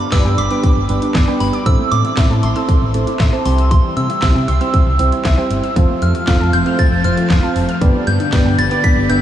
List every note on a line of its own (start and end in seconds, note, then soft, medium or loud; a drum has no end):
0.00 0.11 D4 medium
0.00 0.13 D6 loud
0.00 closed hi-hat medium
0.12 0.23 G1 loud
0.12 0.40 G3 medium
0.12 0.40 B3 medium
0.12 0.40 D4 medium
0.12 0.40 G4 medium
0.12 0.40 B4 medium
0.12 0.24 D5 loud
0.12 0.39 E6 loud
0.12 kick loud
0.12 snare loud
0.12 clap medium
0.12 closed hi-hat medium
0.25 0.36 G2 loud
0.25 0.36 G5 medium
0.38 0.49 G1 loud
0.38 0.49 B5 loud
0.38 1.44 D6 loud
0.38 closed hi-hat medium
0.51 0.79 G3 medium
0.51 0.79 B3 medium
0.51 0.79 D4 medium
0.51 0.79 G4 medium
0.51 0.79 B4 medium
0.51 0.62 D6 medium
0.51 closed hi-hat soft
0.63 kick loud
0.63 closed hi-hat medium
0.76 0.87 G1 loud
0.89 1.00 G1 loud
0.89 1.17 G3 medium
0.89 1.17 B3 medium
0.89 1.17 D4 medium
0.89 1.17 G4 medium
0.89 1.17 B4 medium
0.89 closed hi-hat medium
1.02 1.13 D4 medium
1.02 closed hi-hat medium
1.15 1.26 G1 loud
1.15 1.26 D5 medium
1.15 kick loud
1.15 snare loud
1.15 clap medium
1.15 closed hi-hat medium
1.28 1.56 G3 medium
1.28 1.56 B3 medium
1.28 1.56 D4 medium
1.28 1.55 G4 medium
1.28 1.56 B4 medium
1.28 1.39 G5 medium
1.40 1.52 G1 medium
1.40 1.64 B5 medium
1.40 open hi-hat medium
1.53 1.65 D6 medium
1.53 closed hi-hat soft
1.66 1.77 A1 loud
1.66 1.78 E3 medium
1.66 2.03 A3 medium
1.66 2.03 C4 medium
1.66 2.03 E4 medium
1.66 2.03 A4 medium
1.66 2.03 C5 medium
1.66 1.90 E6 loud
1.66 kick loud
1.66 closed hi-hat medium
1.79 1.90 A3 medium
1.92 2.03 A2 loud
1.92 2.44 D6 loud
1.92 closed hi-hat medium
2.05 2.16 E4 medium
2.05 closed hi-hat medium
2.17 2.29 A1 loud
2.17 2.45 A3 medium
2.17 2.45 C4 medium
2.17 2.45 E4 medium
2.17 2.45 A4 medium
2.17 2.45 C5 medium
2.17 2.29 E5 loud
2.17 kick loud
2.17 snare loud
2.17 clap loud
2.17 closed hi-hat medium
2.30 2.41 A2 loud
2.30 2.42 A5 medium
2.43 2.54 A1 loud
2.43 2.54 C6 loud
2.43 3.42 C6 loud
2.43 closed hi-hat medium
2.56 2.84 A3 medium
2.56 2.84 C4 medium
2.56 2.84 E4 medium
2.56 2.84 A4 medium
2.56 2.84 C5 medium
2.56 2.67 E6 medium
2.56 closed hi-hat soft
2.69 kick loud
2.69 closed hi-hat medium
2.82 2.93 A1 loud
2.94 3.05 A1 loud
2.94 3.22 A3 medium
2.94 3.22 C4 medium
2.94 3.22 E4 medium
2.94 3.22 A4 medium
2.94 3.22 C5 medium
2.94 closed hi-hat medium
3.07 3.18 E4 medium
3.07 closed hi-hat medium
3.20 3.31 A1 loud
3.20 3.31 E5 medium
3.20 kick loud
3.20 snare loud
3.20 clap medium
3.20 closed hi-hat medium
3.33 3.46 A3 medium
3.33 3.44 C4 medium
3.33 3.44 E4 medium
3.33 3.46 A4 medium
3.33 3.44 C5 medium
3.33 3.44 A5 medium
3.45 3.79 C2 loud
3.45 4.07 G3 medium
3.45 4.07 C4 medium
3.45 4.07 E4 medium
3.45 4.07 G4 medium
3.45 4.07 C5 medium
3.45 3.70 C6 medium
3.45 open hi-hat medium
3.58 3.70 E6 medium
3.58 closed hi-hat medium
3.71 3.83 E3 loud
3.71 3.98 C6 medium
3.71 kick loud
3.71 closed hi-hat medium
3.84 3.95 G3 medium
3.97 4.08 C3 loud
3.97 4.21 E6 medium
3.97 closed hi-hat medium
4.10 4.21 E4 medium
4.10 closed hi-hat medium
4.22 4.34 C2 medium
4.22 4.50 G3 medium
4.22 4.50 C4 medium
4.22 4.50 E4 medium
4.22 4.50 G4 medium
4.22 4.50 C5 medium
4.22 4.34 E5 medium
4.22 4.34 E6 medium
4.22 kick loud
4.22 snare loud
4.22 clap loud
4.22 closed hi-hat medium
4.35 4.46 C3 loud
4.35 4.47 G5 medium
4.48 4.59 C2 loud
4.48 4.59 C6 medium
4.48 5.47 E6 loud
4.48 closed hi-hat medium
4.61 4.89 G3 medium
4.61 4.89 C4 medium
4.61 4.89 E4 medium
4.61 4.89 G4 medium
4.61 4.89 C5 medium
4.61 4.72 E6 medium
4.61 closed hi-hat soft
4.74 kick loud
4.74 closed hi-hat medium
4.86 4.98 C2 loud
4.99 5.10 C2 loud
4.99 5.27 G3 medium
4.99 5.27 C4 medium
4.99 5.27 E4 medium
4.99 5.27 G4 medium
4.99 5.27 C5 medium
4.99 closed hi-hat medium
5.12 5.24 E4 medium
5.12 closed hi-hat medium
5.25 5.36 C2 loud
5.25 5.36 E5 medium
5.25 kick loud
5.25 snare loud
5.25 clap medium
5.25 closed hi-hat medium
5.38 5.66 G3 loud
5.38 5.66 C4 medium
5.38 5.66 E4 medium
5.38 5.66 G4 medium
5.38 5.66 C5 loud
5.38 5.49 G5 medium
5.51 5.62 G1 medium
5.51 closed hi-hat medium
5.63 5.75 E6 medium
5.63 closed hi-hat medium
5.76 5.87 F1 loud
5.76 7.79 F3 medium
5.76 5.88 F3 medium
5.76 6.13 A3 medium
5.76 7.79 A3 medium
5.76 7.79 C4 loud
5.76 6.13 C4 medium
5.76 6.13 F4 medium
5.76 6.13 A4 medium
5.76 6.13 C5 loud
5.76 kick loud
5.76 closed hi-hat medium
5.89 6.01 A3 medium
6.02 6.13 F2 loud
6.02 6.50 F6 medium
6.02 closed hi-hat medium
6.15 6.26 F4 medium
6.15 closed hi-hat medium
6.27 6.39 F1 loud
6.27 6.55 A3 medium
6.27 6.55 C4 medium
6.27 6.55 F4 medium
6.27 6.55 A4 medium
6.27 6.55 C5 medium
6.27 6.39 F5 medium
6.27 kick loud
6.27 snare loud
6.27 clap medium
6.27 closed hi-hat medium
6.40 6.51 F2 loud
6.40 6.52 A5 medium
6.53 6.64 F1 loud
6.53 6.65 C6 medium
6.53 6.80 G6 loud
6.53 closed hi-hat medium
6.66 6.94 A3 medium
6.66 6.94 C4 medium
6.66 6.94 F4 medium
6.66 6.94 A4 medium
6.66 6.94 C5 medium
6.66 6.77 F6 medium
6.66 closed hi-hat medium
6.79 6.90 A6 loud
6.79 kick loud
6.79 closed hi-hat medium
6.92 7.03 F1 loud
7.04 7.16 F1 loud
7.04 7.32 A3 medium
7.04 7.32 C4 medium
7.04 7.32 F4 medium
7.04 7.32 A4 medium
7.04 7.32 C5 medium
7.04 7.52 F6 medium
7.04 closed hi-hat medium
7.17 7.29 F4 medium
7.17 closed hi-hat medium
7.30 7.41 F1 loud
7.30 7.42 F5 medium
7.30 kick loud
7.30 snare loud
7.30 clap medium
7.30 closed hi-hat medium
7.43 7.71 A3 medium
7.43 7.71 C4 medium
7.43 7.71 F4 medium
7.43 7.71 A4 medium
7.43 7.71 C5 medium
7.43 7.54 A5 medium
7.56 7.67 F1 medium
7.56 open hi-hat medium
7.69 7.80 F6 medium
7.69 closed hi-hat medium
7.81 7.93 G1 loud
7.81 9.22 D3 medium
7.81 7.93 D3 loud
7.81 9.22 G3 medium
7.81 8.19 B3 medium
7.81 9.22 B3 medium
7.81 8.19 D4 medium
7.81 8.19 G4 medium
7.81 8.19 B4 medium
7.81 8.19 D5 loud
7.81 kick loud
7.81 closed hi-hat medium
7.94 8.06 G3 medium
8.07 8.18 G2 loud
8.07 8.60 G6 loud
8.07 closed hi-hat medium
8.20 8.31 D4 medium
8.20 closed hi-hat medium
8.33 8.44 G1 loud
8.33 8.61 B3 medium
8.33 8.61 D4 medium
8.33 8.61 G4 medium
8.33 8.60 B4 medium
8.33 8.61 D5 medium
8.33 8.44 D5 loud
8.33 kick loud
8.33 snare loud
8.33 clap medium
8.33 closed hi-hat medium
8.45 8.57 G2 loud
8.45 8.57 G5 medium
8.58 8.69 G1 loud
8.58 8.70 B5 medium
8.58 8.85 A6 loud
8.58 closed hi-hat medium
8.71 8.99 B3 medium
8.71 8.99 D4 medium
8.71 8.99 G4 medium
8.71 8.99 B4 medium
8.71 8.99 D5 medium
8.71 8.83 D6 medium
8.71 closed hi-hat medium
8.84 9.10 B6 loud
8.84 kick loud
8.84 closed hi-hat medium
8.97 9.08 G1 medium
9.10 9.21 G1 loud
9.10 9.22 B3 medium
9.10 9.22 D4 medium
9.10 9.22 G4 medium
9.10 9.22 B4 medium
9.10 9.22 E5 medium
9.10 9.21 G6 loud
9.10 closed hi-hat medium